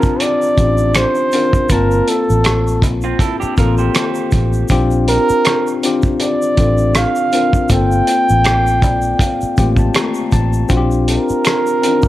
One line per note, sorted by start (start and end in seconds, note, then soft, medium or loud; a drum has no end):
0.00 0.58 C4 medium
0.00 0.65 D4 medium
0.00 0.59 F4 medium
0.00 0.60 G4 loud
0.00 0.23 A#4 medium
0.00 0.52 A5 medium
0.00 kick medium
0.00 shaker soft
0.20 0.98 D5 loud
0.20 closed hi-hat medium
0.20 shaker soft
0.42 shaker soft
0.58 1.04 A1 medium
0.58 1.26 C4 medium
0.58 0.65 C#4 soft
0.58 1.27 F4 medium
0.58 1.27 G4 medium
0.58 kick medium
0.58 closed hi-hat medium
0.58 shaker soft
0.65 1.30 D4 medium
0.78 shaker soft
0.95 1.73 C5 medium
0.95 finger snap medium
0.95 cross-stick loud
0.95 closed hi-hat medium
0.95 shaker medium
1.15 shaker soft
1.32 1.67 C4 medium
1.32 1.67 D4 medium
1.32 1.68 F4 medium
1.32 1.68 A#4 medium
1.32 closed hi-hat medium
1.32 shaker soft
1.53 kick medium
1.53 shaker soft
1.69 2.00 G1 medium
1.69 3.07 A#3 medium
1.69 3.08 C4 medium
1.69 3.08 F4 medium
1.69 2.11 A#4 medium
1.69 3.08 A5 medium
1.69 kick medium
1.69 closed hi-hat medium
1.69 shaker medium
1.91 shaker soft
2.08 2.83 A4 medium
2.08 closed hi-hat medium
2.08 shaker soft
2.30 2.83 A1 medium
2.30 shaker soft
2.44 finger snap medium
2.44 cross-stick medium
2.44 closed hi-hat medium
2.44 shaker soft
2.67 shaker soft
2.82 3.13 A#1 medium
2.82 kick medium
2.82 closed hi-hat medium
2.82 shaker soft
3.02 3.20 C4 medium
3.02 3.20 F4 medium
3.02 shaker soft
3.19 3.40 E4 medium
3.19 3.39 A4 medium
3.19 kick medium
3.19 closed hi-hat medium
3.19 shaker medium
3.40 3.57 D4 medium
3.40 3.56 G4 medium
3.40 muted fingered electric bass stroke soft
3.40 shaker soft
3.57 3.88 A1 medium
3.57 4.61 A#3 medium
3.57 4.61 C4 medium
3.57 3.78 F4 medium
3.57 4.61 F4 medium
3.57 4.61 A4 medium
3.57 3.77 A#4 medium
3.57 kick medium
3.57 closed hi-hat medium
3.57 shaker soft
3.78 4.67 G4 medium
3.78 4.66 C5 medium
3.78 shaker soft
3.95 finger snap medium
3.95 cross-stick loud
3.95 closed hi-hat medium
3.95 shaker medium
4.15 shaker soft
4.31 4.63 A1 medium
4.31 kick medium
4.31 closed hi-hat medium
4.31 shaker soft
4.53 shaker soft
4.68 5.17 A#1 medium
4.68 5.73 C4 loud
4.68 5.73 D4 medium
4.68 5.73 F4 medium
4.68 5.74 G4 loud
4.68 kick loud
4.68 closed hi-hat medium
4.68 shaker medium
4.91 shaker soft
5.08 5.79 A#4 loud
5.08 closed hi-hat medium
5.08 shaker soft
5.29 muted fingered electric bass stroke soft
5.29 shaker soft
5.45 finger snap soft
5.45 cross-stick medium
5.45 closed hi-hat medium
5.45 shaker soft
5.67 shaker soft
5.83 6.51 C4 medium
5.83 6.52 D4 medium
5.83 6.52 F4 medium
5.83 6.52 G4 medium
5.83 closed hi-hat medium
5.83 shaker soft
6.02 kick medium
6.02 shaker soft
6.20 6.99 D5 medium
6.20 closed hi-hat medium
6.20 shaker soft
6.42 shaker soft
6.57 7.04 A1 medium
6.57 7.26 C4 medium
6.57 7.27 D4 medium
6.57 7.27 F4 medium
6.57 7.27 A4 medium
6.57 kick medium
6.57 closed hi-hat medium
6.57 shaker soft
6.78 shaker soft
6.95 7.71 F5 medium
6.95 finger snap medium
6.95 cross-stick loud
6.95 closed hi-hat medium
6.95 shaker medium
7.16 shaker soft
7.32 7.67 C4 medium
7.32 7.67 D4 medium
7.32 7.68 F4 medium
7.32 7.68 A#4 medium
7.32 closed hi-hat medium
7.32 shaker soft
7.53 kick medium
7.53 shaker soft
7.69 8.00 G1 medium
7.69 9.07 A#3 medium
7.69 9.07 C4 medium
7.69 9.08 F4 medium
7.69 9.08 A4 medium
7.69 kick loud
7.69 closed hi-hat medium
7.69 shaker medium
7.73 9.93 G5 loud
7.92 shaker soft
8.07 closed hi-hat medium
8.07 shaker soft
8.29 8.83 A1 medium
8.29 shaker soft
8.44 finger snap soft
8.44 cross-stick medium
8.44 closed hi-hat medium
8.44 shaker soft
8.67 shaker soft
8.82 9.13 A#1 medium
8.82 9.18 D5 medium
8.82 kick medium
8.82 closed hi-hat medium
8.82 shaker soft
9.02 shaker soft
9.19 9.55 F5 medium
9.19 kick medium
9.19 closed hi-hat medium
9.19 shaker medium
9.41 muted fingered electric bass stroke soft
9.41 shaker soft
9.57 9.88 A1 medium
9.57 9.65 A3 medium
9.57 10.60 C4 medium
9.57 10.61 F4 medium
9.57 10.61 G4 medium
9.57 9.77 G5 medium
9.57 kick medium
9.57 closed hi-hat medium
9.57 shaker soft
9.64 10.63 A#3 medium
9.77 9.94 A5 medium
9.77 kick medium
9.77 shaker soft
9.95 10.30 A#5 medium
9.95 finger snap medium
9.95 cross-stick loud
9.95 closed hi-hat medium
9.95 shaker medium
10.14 shaker soft
10.32 10.63 A1 medium
10.32 10.68 A5 medium
10.32 kick medium
10.32 closed hi-hat medium
10.32 shaker soft
10.53 shaker soft
10.69 11.17 A#1 medium
10.69 11.72 C4 medium
10.69 11.72 D4 medium
10.69 11.73 F4 medium
10.69 10.78 F#4 medium
10.69 kick medium
10.69 closed hi-hat medium
10.69 shaker medium
10.77 11.76 G4 loud
10.91 shaker soft
11.08 12.08 A#4 medium
11.08 closed hi-hat medium
11.08 shaker soft
11.29 muted fingered electric bass stroke soft
11.29 shaker soft
11.45 finger snap soft
11.45 cross-stick medium
11.45 closed hi-hat medium
11.45 shaker soft
11.67 shaker soft
11.82 12.08 C4 medium
11.82 11.90 C#4 soft
11.82 12.08 F4 medium
11.82 12.08 A#4 medium
11.82 closed hi-hat medium
11.82 shaker soft
11.89 12.08 D4 medium
12.02 kick medium
12.02 shaker soft